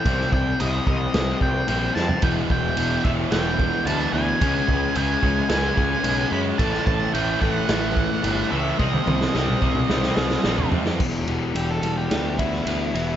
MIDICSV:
0, 0, Header, 1, 6, 480
1, 0, Start_track
1, 0, Tempo, 545951
1, 43, Time_signature, 4, 2, 24, 8
1, 6764, Tempo, 552995
1, 11512, End_track
2, 0, Start_track
2, 0, Title_t, "Lead electric guitar"
2, 0, Program_c, 0, 29
2, 0, Note_on_c, 0, 79, 101
2, 259, Note_off_c, 0, 79, 0
2, 297, Note_on_c, 0, 79, 89
2, 514, Note_off_c, 0, 79, 0
2, 533, Note_on_c, 0, 75, 94
2, 751, Note_off_c, 0, 75, 0
2, 769, Note_on_c, 0, 75, 94
2, 1211, Note_off_c, 0, 75, 0
2, 1251, Note_on_c, 0, 79, 84
2, 1473, Note_off_c, 0, 79, 0
2, 1484, Note_on_c, 0, 79, 98
2, 1705, Note_off_c, 0, 79, 0
2, 1713, Note_on_c, 0, 81, 93
2, 1964, Note_off_c, 0, 81, 0
2, 1967, Note_on_c, 0, 79, 92
2, 2031, Note_off_c, 0, 79, 0
2, 2210, Note_on_c, 0, 79, 95
2, 2673, Note_on_c, 0, 76, 93
2, 2698, Note_off_c, 0, 79, 0
2, 2738, Note_off_c, 0, 76, 0
2, 2914, Note_on_c, 0, 79, 91
2, 3395, Note_off_c, 0, 79, 0
2, 3399, Note_on_c, 0, 81, 95
2, 3622, Note_off_c, 0, 81, 0
2, 3633, Note_on_c, 0, 80, 110
2, 4357, Note_off_c, 0, 80, 0
2, 4368, Note_on_c, 0, 80, 99
2, 4810, Note_off_c, 0, 80, 0
2, 4836, Note_on_c, 0, 80, 98
2, 5060, Note_off_c, 0, 80, 0
2, 5083, Note_on_c, 0, 80, 99
2, 5528, Note_off_c, 0, 80, 0
2, 5564, Note_on_c, 0, 83, 102
2, 5628, Note_off_c, 0, 83, 0
2, 5787, Note_on_c, 0, 81, 110
2, 6024, Note_off_c, 0, 81, 0
2, 6034, Note_on_c, 0, 81, 96
2, 6261, Note_off_c, 0, 81, 0
2, 6276, Note_on_c, 0, 79, 98
2, 6513, Note_off_c, 0, 79, 0
2, 6516, Note_on_c, 0, 79, 106
2, 6613, Note_off_c, 0, 79, 0
2, 6613, Note_on_c, 0, 78, 106
2, 7478, Note_on_c, 0, 76, 92
2, 7504, Note_off_c, 0, 78, 0
2, 7715, Note_off_c, 0, 76, 0
2, 7719, Note_on_c, 0, 75, 85
2, 9360, Note_off_c, 0, 75, 0
2, 10123, Note_on_c, 0, 67, 81
2, 10247, Note_off_c, 0, 67, 0
2, 10247, Note_on_c, 0, 69, 72
2, 10475, Note_off_c, 0, 69, 0
2, 10483, Note_on_c, 0, 67, 74
2, 10831, Note_off_c, 0, 67, 0
2, 10839, Note_on_c, 0, 64, 77
2, 11512, Note_off_c, 0, 64, 0
2, 11512, End_track
3, 0, Start_track
3, 0, Title_t, "Clean electric guitar"
3, 0, Program_c, 1, 27
3, 9626, Note_on_c, 1, 40, 61
3, 9873, Note_on_c, 1, 55, 57
3, 10108, Note_on_c, 1, 52, 66
3, 10341, Note_off_c, 1, 55, 0
3, 10351, Note_on_c, 1, 55, 67
3, 10603, Note_on_c, 1, 59, 63
3, 10835, Note_off_c, 1, 40, 0
3, 10836, Note_on_c, 1, 64, 62
3, 11070, Note_off_c, 1, 59, 0
3, 11081, Note_on_c, 1, 59, 65
3, 11312, Note_off_c, 1, 52, 0
3, 11316, Note_on_c, 1, 52, 67
3, 11512, Note_off_c, 1, 52, 0
3, 11512, Note_off_c, 1, 55, 0
3, 11512, Note_off_c, 1, 59, 0
3, 11512, Note_off_c, 1, 64, 0
3, 11512, End_track
4, 0, Start_track
4, 0, Title_t, "Overdriven electric guitar"
4, 0, Program_c, 2, 29
4, 51, Note_on_c, 2, 48, 92
4, 54, Note_on_c, 2, 55, 86
4, 59, Note_on_c, 2, 60, 100
4, 523, Note_off_c, 2, 48, 0
4, 534, Note_on_c, 2, 48, 74
4, 535, Note_off_c, 2, 60, 0
4, 537, Note_off_c, 2, 55, 0
4, 540, Note_on_c, 2, 55, 90
4, 545, Note_on_c, 2, 60, 88
4, 753, Note_off_c, 2, 48, 0
4, 763, Note_on_c, 2, 48, 81
4, 766, Note_off_c, 2, 55, 0
4, 767, Note_off_c, 2, 60, 0
4, 770, Note_on_c, 2, 55, 80
4, 777, Note_on_c, 2, 60, 101
4, 995, Note_off_c, 2, 48, 0
4, 998, Note_off_c, 2, 55, 0
4, 1004, Note_off_c, 2, 60, 0
4, 1006, Note_on_c, 2, 48, 101
4, 1009, Note_on_c, 2, 55, 110
4, 1015, Note_on_c, 2, 60, 110
4, 1462, Note_off_c, 2, 48, 0
4, 1471, Note_off_c, 2, 60, 0
4, 1472, Note_off_c, 2, 55, 0
4, 1473, Note_on_c, 2, 48, 97
4, 1481, Note_on_c, 2, 60, 98
4, 1482, Note_on_c, 2, 55, 94
4, 1703, Note_off_c, 2, 48, 0
4, 1708, Note_off_c, 2, 55, 0
4, 1711, Note_off_c, 2, 60, 0
4, 1714, Note_on_c, 2, 48, 76
4, 1719, Note_on_c, 2, 55, 83
4, 1721, Note_on_c, 2, 60, 93
4, 1943, Note_off_c, 2, 48, 0
4, 1945, Note_off_c, 2, 55, 0
4, 1946, Note_off_c, 2, 60, 0
4, 1952, Note_on_c, 2, 40, 81
4, 1957, Note_on_c, 2, 47, 87
4, 1962, Note_on_c, 2, 52, 92
4, 2422, Note_off_c, 2, 40, 0
4, 2426, Note_off_c, 2, 47, 0
4, 2433, Note_on_c, 2, 40, 78
4, 2436, Note_on_c, 2, 47, 71
4, 2439, Note_off_c, 2, 52, 0
4, 2442, Note_on_c, 2, 52, 87
4, 2666, Note_off_c, 2, 40, 0
4, 2675, Note_off_c, 2, 47, 0
4, 2676, Note_on_c, 2, 40, 73
4, 2686, Note_off_c, 2, 52, 0
4, 2686, Note_on_c, 2, 47, 85
4, 2689, Note_on_c, 2, 52, 83
4, 2905, Note_off_c, 2, 40, 0
4, 2910, Note_off_c, 2, 47, 0
4, 2916, Note_on_c, 2, 40, 96
4, 2919, Note_off_c, 2, 52, 0
4, 2921, Note_on_c, 2, 47, 109
4, 2923, Note_on_c, 2, 52, 107
4, 3390, Note_off_c, 2, 40, 0
4, 3394, Note_off_c, 2, 47, 0
4, 3400, Note_on_c, 2, 40, 93
4, 3404, Note_on_c, 2, 47, 100
4, 3406, Note_off_c, 2, 52, 0
4, 3409, Note_on_c, 2, 52, 97
4, 3630, Note_off_c, 2, 40, 0
4, 3638, Note_off_c, 2, 47, 0
4, 3641, Note_on_c, 2, 40, 82
4, 3647, Note_off_c, 2, 52, 0
4, 3649, Note_on_c, 2, 47, 87
4, 3651, Note_on_c, 2, 52, 77
4, 3865, Note_off_c, 2, 40, 0
4, 3869, Note_off_c, 2, 47, 0
4, 3877, Note_off_c, 2, 52, 0
4, 3877, Note_on_c, 2, 49, 84
4, 3881, Note_on_c, 2, 56, 98
4, 3886, Note_on_c, 2, 61, 94
4, 4347, Note_off_c, 2, 49, 0
4, 4353, Note_off_c, 2, 56, 0
4, 4357, Note_on_c, 2, 49, 73
4, 4364, Note_on_c, 2, 56, 83
4, 4367, Note_off_c, 2, 61, 0
4, 4370, Note_on_c, 2, 61, 90
4, 4586, Note_off_c, 2, 49, 0
4, 4591, Note_off_c, 2, 56, 0
4, 4596, Note_on_c, 2, 49, 77
4, 4601, Note_on_c, 2, 56, 92
4, 4602, Note_off_c, 2, 61, 0
4, 4606, Note_on_c, 2, 61, 103
4, 4825, Note_off_c, 2, 49, 0
4, 4831, Note_off_c, 2, 56, 0
4, 4836, Note_off_c, 2, 61, 0
4, 4836, Note_on_c, 2, 49, 91
4, 4841, Note_on_c, 2, 56, 114
4, 4847, Note_on_c, 2, 61, 105
4, 5295, Note_off_c, 2, 49, 0
4, 5301, Note_off_c, 2, 56, 0
4, 5302, Note_off_c, 2, 61, 0
4, 5306, Note_on_c, 2, 49, 87
4, 5311, Note_on_c, 2, 56, 101
4, 5312, Note_on_c, 2, 61, 104
4, 5534, Note_off_c, 2, 49, 0
4, 5545, Note_off_c, 2, 56, 0
4, 5545, Note_on_c, 2, 49, 82
4, 5546, Note_off_c, 2, 61, 0
4, 5555, Note_on_c, 2, 56, 87
4, 5557, Note_on_c, 2, 61, 90
4, 5778, Note_off_c, 2, 49, 0
4, 5783, Note_off_c, 2, 56, 0
4, 5784, Note_off_c, 2, 61, 0
4, 5793, Note_on_c, 2, 45, 97
4, 5798, Note_on_c, 2, 52, 101
4, 5803, Note_on_c, 2, 57, 109
4, 6264, Note_off_c, 2, 45, 0
4, 6267, Note_off_c, 2, 52, 0
4, 6269, Note_off_c, 2, 57, 0
4, 6274, Note_on_c, 2, 45, 74
4, 6277, Note_on_c, 2, 52, 80
4, 6280, Note_on_c, 2, 57, 92
4, 6508, Note_off_c, 2, 45, 0
4, 6513, Note_off_c, 2, 52, 0
4, 6517, Note_off_c, 2, 57, 0
4, 6518, Note_on_c, 2, 45, 85
4, 6524, Note_on_c, 2, 52, 79
4, 6528, Note_on_c, 2, 57, 91
4, 6747, Note_off_c, 2, 45, 0
4, 6752, Note_off_c, 2, 52, 0
4, 6755, Note_off_c, 2, 57, 0
4, 6758, Note_on_c, 2, 45, 101
4, 6762, Note_on_c, 2, 52, 100
4, 6766, Note_on_c, 2, 57, 115
4, 7223, Note_off_c, 2, 45, 0
4, 7229, Note_off_c, 2, 52, 0
4, 7234, Note_off_c, 2, 57, 0
4, 7234, Note_on_c, 2, 45, 97
4, 7239, Note_on_c, 2, 52, 107
4, 7245, Note_on_c, 2, 57, 106
4, 7466, Note_off_c, 2, 45, 0
4, 7470, Note_off_c, 2, 52, 0
4, 7476, Note_off_c, 2, 57, 0
4, 7476, Note_on_c, 2, 45, 77
4, 7481, Note_on_c, 2, 52, 85
4, 7487, Note_on_c, 2, 57, 81
4, 7702, Note_off_c, 2, 45, 0
4, 7704, Note_off_c, 2, 52, 0
4, 7707, Note_off_c, 2, 57, 0
4, 7716, Note_on_c, 2, 48, 85
4, 7721, Note_on_c, 2, 55, 98
4, 7724, Note_on_c, 2, 60, 98
4, 8188, Note_off_c, 2, 48, 0
4, 8192, Note_off_c, 2, 55, 0
4, 8194, Note_off_c, 2, 60, 0
4, 8198, Note_on_c, 2, 48, 77
4, 8202, Note_on_c, 2, 55, 83
4, 8204, Note_on_c, 2, 60, 90
4, 8423, Note_off_c, 2, 48, 0
4, 8431, Note_off_c, 2, 55, 0
4, 8434, Note_off_c, 2, 60, 0
4, 8434, Note_on_c, 2, 48, 84
4, 8442, Note_on_c, 2, 55, 85
4, 8444, Note_on_c, 2, 60, 93
4, 8669, Note_off_c, 2, 48, 0
4, 8674, Note_off_c, 2, 55, 0
4, 8679, Note_on_c, 2, 48, 100
4, 8680, Note_off_c, 2, 60, 0
4, 8684, Note_on_c, 2, 55, 109
4, 8690, Note_on_c, 2, 60, 118
4, 9142, Note_off_c, 2, 48, 0
4, 9150, Note_off_c, 2, 55, 0
4, 9153, Note_on_c, 2, 48, 87
4, 9154, Note_off_c, 2, 60, 0
4, 9161, Note_on_c, 2, 55, 98
4, 9164, Note_on_c, 2, 60, 108
4, 9388, Note_off_c, 2, 48, 0
4, 9391, Note_off_c, 2, 55, 0
4, 9394, Note_off_c, 2, 60, 0
4, 9398, Note_on_c, 2, 48, 72
4, 9402, Note_on_c, 2, 55, 74
4, 9405, Note_on_c, 2, 60, 87
4, 9622, Note_off_c, 2, 48, 0
4, 9624, Note_off_c, 2, 55, 0
4, 9625, Note_off_c, 2, 60, 0
4, 9629, Note_on_c, 2, 40, 79
4, 9639, Note_on_c, 2, 47, 85
4, 9643, Note_on_c, 2, 52, 95
4, 9858, Note_off_c, 2, 40, 0
4, 9864, Note_off_c, 2, 47, 0
4, 9869, Note_on_c, 2, 40, 73
4, 9875, Note_on_c, 2, 47, 83
4, 9879, Note_off_c, 2, 52, 0
4, 9882, Note_on_c, 2, 52, 79
4, 10101, Note_off_c, 2, 40, 0
4, 10106, Note_off_c, 2, 47, 0
4, 10112, Note_on_c, 2, 40, 86
4, 10116, Note_on_c, 2, 47, 82
4, 10118, Note_off_c, 2, 52, 0
4, 10122, Note_on_c, 2, 52, 81
4, 10350, Note_off_c, 2, 40, 0
4, 10357, Note_off_c, 2, 47, 0
4, 10360, Note_on_c, 2, 40, 69
4, 10368, Note_on_c, 2, 47, 81
4, 10371, Note_off_c, 2, 52, 0
4, 10375, Note_on_c, 2, 52, 89
4, 10582, Note_off_c, 2, 40, 0
4, 10589, Note_off_c, 2, 47, 0
4, 10593, Note_on_c, 2, 40, 80
4, 10599, Note_on_c, 2, 47, 92
4, 10602, Note_off_c, 2, 52, 0
4, 10605, Note_on_c, 2, 52, 103
4, 10823, Note_off_c, 2, 40, 0
4, 10829, Note_off_c, 2, 47, 0
4, 10833, Note_on_c, 2, 40, 70
4, 10839, Note_on_c, 2, 47, 76
4, 10841, Note_off_c, 2, 52, 0
4, 10844, Note_on_c, 2, 52, 95
4, 11074, Note_off_c, 2, 40, 0
4, 11078, Note_off_c, 2, 47, 0
4, 11085, Note_on_c, 2, 40, 82
4, 11089, Note_on_c, 2, 47, 111
4, 11090, Note_off_c, 2, 52, 0
4, 11094, Note_on_c, 2, 52, 106
4, 11317, Note_off_c, 2, 40, 0
4, 11321, Note_off_c, 2, 47, 0
4, 11327, Note_on_c, 2, 40, 67
4, 11332, Note_on_c, 2, 47, 74
4, 11335, Note_off_c, 2, 52, 0
4, 11338, Note_on_c, 2, 52, 75
4, 11512, Note_off_c, 2, 40, 0
4, 11512, Note_off_c, 2, 47, 0
4, 11512, Note_off_c, 2, 52, 0
4, 11512, End_track
5, 0, Start_track
5, 0, Title_t, "Picked electric bass"
5, 0, Program_c, 3, 34
5, 49, Note_on_c, 3, 36, 88
5, 215, Note_off_c, 3, 36, 0
5, 285, Note_on_c, 3, 36, 94
5, 452, Note_off_c, 3, 36, 0
5, 533, Note_on_c, 3, 36, 97
5, 697, Note_off_c, 3, 36, 0
5, 762, Note_on_c, 3, 36, 81
5, 930, Note_off_c, 3, 36, 0
5, 1004, Note_on_c, 3, 36, 91
5, 1171, Note_off_c, 3, 36, 0
5, 1241, Note_on_c, 3, 36, 80
5, 1408, Note_off_c, 3, 36, 0
5, 1486, Note_on_c, 3, 34, 90
5, 1652, Note_off_c, 3, 34, 0
5, 1723, Note_on_c, 3, 41, 81
5, 1890, Note_off_c, 3, 41, 0
5, 1957, Note_on_c, 3, 28, 91
5, 2126, Note_off_c, 3, 28, 0
5, 2198, Note_on_c, 3, 28, 84
5, 2366, Note_off_c, 3, 28, 0
5, 2444, Note_on_c, 3, 28, 90
5, 2610, Note_off_c, 3, 28, 0
5, 2679, Note_on_c, 3, 28, 88
5, 2847, Note_off_c, 3, 28, 0
5, 2916, Note_on_c, 3, 28, 88
5, 3252, Note_off_c, 3, 28, 0
5, 3389, Note_on_c, 3, 38, 92
5, 3560, Note_off_c, 3, 38, 0
5, 3632, Note_on_c, 3, 38, 91
5, 3801, Note_off_c, 3, 38, 0
5, 3883, Note_on_c, 3, 37, 87
5, 4049, Note_off_c, 3, 37, 0
5, 4120, Note_on_c, 3, 37, 95
5, 4287, Note_off_c, 3, 37, 0
5, 4360, Note_on_c, 3, 37, 89
5, 4527, Note_off_c, 3, 37, 0
5, 4597, Note_on_c, 3, 37, 82
5, 4765, Note_off_c, 3, 37, 0
5, 4839, Note_on_c, 3, 37, 94
5, 5007, Note_off_c, 3, 37, 0
5, 5078, Note_on_c, 3, 37, 87
5, 5246, Note_off_c, 3, 37, 0
5, 5311, Note_on_c, 3, 35, 91
5, 5481, Note_off_c, 3, 35, 0
5, 5556, Note_on_c, 3, 42, 90
5, 5725, Note_off_c, 3, 42, 0
5, 5795, Note_on_c, 3, 33, 90
5, 5965, Note_off_c, 3, 33, 0
5, 6037, Note_on_c, 3, 33, 94
5, 6206, Note_off_c, 3, 33, 0
5, 6280, Note_on_c, 3, 33, 96
5, 6449, Note_off_c, 3, 33, 0
5, 6524, Note_on_c, 3, 33, 93
5, 6692, Note_off_c, 3, 33, 0
5, 6760, Note_on_c, 3, 33, 102
5, 7094, Note_off_c, 3, 33, 0
5, 7235, Note_on_c, 3, 31, 97
5, 7403, Note_off_c, 3, 31, 0
5, 7483, Note_on_c, 3, 37, 85
5, 7648, Note_off_c, 3, 37, 0
5, 7722, Note_on_c, 3, 36, 92
5, 7887, Note_off_c, 3, 36, 0
5, 7957, Note_on_c, 3, 36, 92
5, 8124, Note_off_c, 3, 36, 0
5, 8204, Note_on_c, 3, 36, 91
5, 8368, Note_off_c, 3, 36, 0
5, 8437, Note_on_c, 3, 36, 84
5, 8603, Note_off_c, 3, 36, 0
5, 8675, Note_on_c, 3, 36, 99
5, 8842, Note_off_c, 3, 36, 0
5, 8913, Note_on_c, 3, 36, 85
5, 9081, Note_off_c, 3, 36, 0
5, 9156, Note_on_c, 3, 34, 88
5, 9323, Note_off_c, 3, 34, 0
5, 9393, Note_on_c, 3, 41, 80
5, 9633, Note_on_c, 3, 28, 81
5, 9646, Note_off_c, 3, 41, 0
5, 9844, Note_off_c, 3, 28, 0
5, 9876, Note_on_c, 3, 28, 80
5, 10086, Note_off_c, 3, 28, 0
5, 10111, Note_on_c, 3, 28, 89
5, 10324, Note_off_c, 3, 28, 0
5, 10350, Note_on_c, 3, 28, 78
5, 10564, Note_off_c, 3, 28, 0
5, 10596, Note_on_c, 3, 38, 87
5, 11019, Note_off_c, 3, 38, 0
5, 11073, Note_on_c, 3, 38, 88
5, 11288, Note_off_c, 3, 38, 0
5, 11326, Note_on_c, 3, 28, 77
5, 11512, Note_off_c, 3, 28, 0
5, 11512, End_track
6, 0, Start_track
6, 0, Title_t, "Drums"
6, 49, Note_on_c, 9, 36, 106
6, 49, Note_on_c, 9, 49, 58
6, 137, Note_off_c, 9, 36, 0
6, 137, Note_off_c, 9, 49, 0
6, 177, Note_on_c, 9, 38, 30
6, 265, Note_off_c, 9, 38, 0
6, 286, Note_on_c, 9, 36, 92
6, 374, Note_off_c, 9, 36, 0
6, 526, Note_on_c, 9, 49, 58
6, 614, Note_off_c, 9, 49, 0
6, 764, Note_on_c, 9, 36, 85
6, 852, Note_off_c, 9, 36, 0
6, 1003, Note_on_c, 9, 49, 57
6, 1005, Note_on_c, 9, 38, 114
6, 1091, Note_off_c, 9, 49, 0
6, 1093, Note_off_c, 9, 38, 0
6, 1241, Note_on_c, 9, 36, 90
6, 1329, Note_off_c, 9, 36, 0
6, 1476, Note_on_c, 9, 49, 59
6, 1564, Note_off_c, 9, 49, 0
6, 1722, Note_on_c, 9, 38, 65
6, 1810, Note_off_c, 9, 38, 0
6, 1838, Note_on_c, 9, 43, 94
6, 1926, Note_off_c, 9, 43, 0
6, 1952, Note_on_c, 9, 49, 61
6, 1959, Note_on_c, 9, 36, 116
6, 2040, Note_off_c, 9, 49, 0
6, 2047, Note_off_c, 9, 36, 0
6, 2199, Note_on_c, 9, 36, 89
6, 2287, Note_off_c, 9, 36, 0
6, 2435, Note_on_c, 9, 49, 62
6, 2523, Note_off_c, 9, 49, 0
6, 2681, Note_on_c, 9, 36, 84
6, 2769, Note_off_c, 9, 36, 0
6, 2917, Note_on_c, 9, 49, 59
6, 2920, Note_on_c, 9, 38, 111
6, 3005, Note_off_c, 9, 49, 0
6, 3008, Note_off_c, 9, 38, 0
6, 3160, Note_on_c, 9, 36, 93
6, 3248, Note_off_c, 9, 36, 0
6, 3401, Note_on_c, 9, 49, 61
6, 3489, Note_off_c, 9, 49, 0
6, 3881, Note_on_c, 9, 36, 112
6, 3882, Note_on_c, 9, 49, 66
6, 3969, Note_off_c, 9, 36, 0
6, 3970, Note_off_c, 9, 49, 0
6, 4120, Note_on_c, 9, 36, 89
6, 4208, Note_off_c, 9, 36, 0
6, 4357, Note_on_c, 9, 49, 65
6, 4445, Note_off_c, 9, 49, 0
6, 4597, Note_on_c, 9, 36, 82
6, 4685, Note_off_c, 9, 36, 0
6, 4831, Note_on_c, 9, 49, 57
6, 4833, Note_on_c, 9, 38, 106
6, 4919, Note_off_c, 9, 49, 0
6, 4921, Note_off_c, 9, 38, 0
6, 5077, Note_on_c, 9, 36, 93
6, 5165, Note_off_c, 9, 36, 0
6, 5312, Note_on_c, 9, 49, 63
6, 5400, Note_off_c, 9, 49, 0
6, 5796, Note_on_c, 9, 49, 62
6, 5797, Note_on_c, 9, 36, 102
6, 5883, Note_off_c, 9, 49, 0
6, 5885, Note_off_c, 9, 36, 0
6, 5921, Note_on_c, 9, 38, 33
6, 6009, Note_off_c, 9, 38, 0
6, 6039, Note_on_c, 9, 36, 101
6, 6127, Note_off_c, 9, 36, 0
6, 6283, Note_on_c, 9, 49, 62
6, 6371, Note_off_c, 9, 49, 0
6, 6521, Note_on_c, 9, 36, 82
6, 6609, Note_off_c, 9, 36, 0
6, 6760, Note_on_c, 9, 49, 63
6, 6762, Note_on_c, 9, 38, 113
6, 6846, Note_off_c, 9, 49, 0
6, 6849, Note_off_c, 9, 38, 0
6, 7002, Note_on_c, 9, 36, 92
6, 7089, Note_off_c, 9, 36, 0
6, 7238, Note_on_c, 9, 49, 67
6, 7325, Note_off_c, 9, 49, 0
6, 7721, Note_on_c, 9, 36, 105
6, 7807, Note_off_c, 9, 36, 0
6, 7840, Note_on_c, 9, 48, 64
6, 7926, Note_off_c, 9, 48, 0
6, 7962, Note_on_c, 9, 48, 79
6, 8049, Note_off_c, 9, 48, 0
6, 8083, Note_on_c, 9, 38, 63
6, 8169, Note_off_c, 9, 38, 0
6, 8198, Note_on_c, 9, 38, 76
6, 8285, Note_off_c, 9, 38, 0
6, 8316, Note_on_c, 9, 47, 70
6, 8403, Note_off_c, 9, 47, 0
6, 8436, Note_on_c, 9, 36, 79
6, 8523, Note_off_c, 9, 36, 0
6, 8549, Note_on_c, 9, 47, 75
6, 8635, Note_off_c, 9, 47, 0
6, 8677, Note_on_c, 9, 38, 84
6, 8763, Note_off_c, 9, 38, 0
6, 8794, Note_on_c, 9, 38, 79
6, 8881, Note_off_c, 9, 38, 0
6, 8911, Note_on_c, 9, 38, 94
6, 8998, Note_off_c, 9, 38, 0
6, 9027, Note_on_c, 9, 38, 80
6, 9114, Note_off_c, 9, 38, 0
6, 9146, Note_on_c, 9, 38, 101
6, 9233, Note_off_c, 9, 38, 0
6, 9272, Note_on_c, 9, 43, 92
6, 9359, Note_off_c, 9, 43, 0
6, 9388, Note_on_c, 9, 43, 112
6, 9475, Note_off_c, 9, 43, 0
6, 9511, Note_on_c, 9, 38, 91
6, 9598, Note_off_c, 9, 38, 0
6, 9633, Note_on_c, 9, 57, 100
6, 9635, Note_on_c, 9, 36, 105
6, 9720, Note_off_c, 9, 57, 0
6, 9722, Note_off_c, 9, 36, 0
6, 9874, Note_on_c, 9, 51, 64
6, 9961, Note_off_c, 9, 51, 0
6, 10116, Note_on_c, 9, 51, 79
6, 10203, Note_off_c, 9, 51, 0
6, 10355, Note_on_c, 9, 51, 63
6, 10442, Note_off_c, 9, 51, 0
6, 10598, Note_on_c, 9, 51, 84
6, 10601, Note_on_c, 9, 38, 107
6, 10685, Note_off_c, 9, 51, 0
6, 10687, Note_off_c, 9, 38, 0
6, 10841, Note_on_c, 9, 36, 86
6, 10842, Note_on_c, 9, 51, 70
6, 10928, Note_off_c, 9, 36, 0
6, 10929, Note_off_c, 9, 51, 0
6, 10967, Note_on_c, 9, 38, 31
6, 11053, Note_off_c, 9, 38, 0
6, 11081, Note_on_c, 9, 51, 91
6, 11168, Note_off_c, 9, 51, 0
6, 11330, Note_on_c, 9, 51, 72
6, 11416, Note_off_c, 9, 51, 0
6, 11512, End_track
0, 0, End_of_file